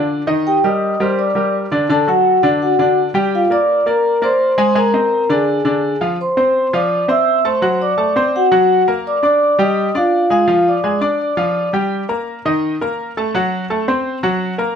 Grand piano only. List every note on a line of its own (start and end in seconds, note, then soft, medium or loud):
0.00 0.21 D3 medium
0.00 0.21 D4 medium
0.00 0.22 D5 medium
0.27 0.57 D#3 medium
0.27 0.57 D#4 medium
0.27 0.57 D#5 medium
0.64 0.93 G3 medium
0.64 0.93 G4 medium
0.64 0.94 A#4 medium
1.00 1.29 G3 medium
1.00 1.29 G4 medium
1.00 1.29 A#4 medium
1.35 1.65 G3 medium
1.35 1.65 G4 medium
1.35 1.65 A#4 medium
1.72 1.86 D3 medium
1.72 1.86 D4 medium
1.72 1.86 D5 medium
1.89 2.04 D3 medium
1.89 2.04 D4 medium
1.89 2.04 D5 medium
2.08 2.37 F#3 medium
2.08 2.37 F#4 medium
2.08 2.37 A4 medium
2.43 2.72 D3 medium
2.43 2.72 D4 medium
2.43 2.73 D5 medium
2.79 3.08 D3 medium
2.79 3.08 D4 medium
2.79 3.08 D5 medium
3.14 3.44 G3 medium
3.14 3.44 G4 medium
3.14 3.44 G5 medium
3.50 3.80 A#3 medium
3.50 3.80 A#4 medium
3.50 3.80 D5 medium
3.86 4.15 A#3 medium
3.86 4.16 A#4 medium
3.86 4.16 D5 medium
4.22 4.51 A#3 medium
4.22 4.51 A#4 medium
4.22 4.51 D5 medium
4.58 4.72 G#3 medium
4.58 4.72 G#4 medium
4.58 4.73 G#5 medium
4.75 4.90 G#3 medium
4.75 4.90 G#4 medium
4.75 4.90 G#5 medium
4.94 5.23 C4 medium
4.94 5.23 C5 medium
4.94 5.23 D#5 medium
5.29 5.59 D3 medium
5.29 5.59 D4 medium
5.29 5.59 D5 medium
5.65 5.94 D3 medium
5.65 5.94 D4 medium
5.65 5.95 D5 medium
6.01 6.16 F3 medium
6.01 6.16 F4 medium
6.01 6.16 F5 medium
6.37 6.66 C4 medium
6.37 6.66 C5 medium
6.37 6.66 C6 medium
6.73 7.02 F3 medium
6.73 7.02 F4 medium
6.73 7.03 F5 medium
7.08 7.38 C4 medium
7.08 7.38 C5 medium
7.08 7.38 C6 medium
7.45 7.59 A3 medium
7.45 7.59 A4 medium
7.45 7.59 A5 medium
7.62 7.91 F#3 medium
7.62 7.91 F#4 medium
7.62 7.92 F#5 medium
7.97 8.12 A3 medium
7.97 8.12 A4 medium
7.97 8.12 A5 medium
8.16 8.45 C4 medium
8.16 8.45 C5 medium
8.16 8.45 C6 medium
8.52 8.81 F#3 medium
8.52 8.81 F#4 medium
8.52 8.81 F#5 medium
8.88 9.17 A#3 medium
8.88 9.17 A#4 medium
8.88 9.17 A#5 medium
9.23 9.52 D4 medium
9.23 9.52 D5 medium
9.23 9.52 D6 medium
9.59 9.88 G3 medium
9.59 9.88 G4 medium
9.59 9.88 G5 medium
9.95 10.24 D4 medium
9.95 10.24 D5 medium
9.95 10.24 D6 medium
10.30 10.45 G#3 medium
10.30 10.45 G#4 medium
10.30 10.45 G#5 medium
10.47 10.77 F3 medium
10.47 10.77 F4 medium
10.47 10.77 F5 medium
10.84 10.98 G#3 medium
10.84 10.98 G#4 medium
10.84 10.98 G#5 medium
11.01 11.30 D4 medium
11.01 11.31 D5 medium
11.01 11.31 D6 medium
11.37 11.66 F3 medium
11.37 11.67 F4 medium
11.37 11.67 F5 medium
11.73 12.02 G3 medium
11.73 12.03 G4 medium
11.73 12.03 G5 medium
12.09 12.38 A#3 medium
12.09 12.38 A#4 medium
12.09 12.38 A#5 medium
12.45 12.74 D#3 medium
12.45 12.74 D#4 medium
12.45 12.75 D#5 medium
12.81 13.10 A#3 medium
12.81 13.10 A#4 medium
12.81 13.11 A#5 medium
13.17 13.31 A3 medium
13.17 13.31 A4 medium
13.17 13.32 A5 medium
13.34 13.64 F#3 medium
13.34 13.64 F#4 medium
13.34 13.64 F#5 medium
13.70 13.84 A3 medium
13.70 13.85 A4 medium
13.70 13.85 A5 medium
13.88 14.17 C4 medium
13.88 14.17 C5 medium
13.88 14.17 C6 medium
14.23 14.52 F#3 medium
14.23 14.53 F#4 medium
14.23 14.53 F#5 medium
14.58 14.76 A#3 medium
14.58 14.76 A#4 medium
14.58 14.76 A#5 medium